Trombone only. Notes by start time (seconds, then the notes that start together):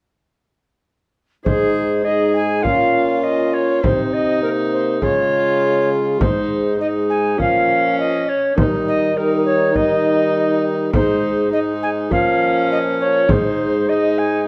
1.46 D#4
2.05 D#4
2.65 C#4
3.84 C4
4.43 A#3
5.02 G#3
6.21 G#3
6.80 G#3
7.39 F3
8.58 G3
9.17 G3
9.75 G3
10.94 G#3
11.53 G#3
12.11 F3
13.29 G#3
13.88 G#3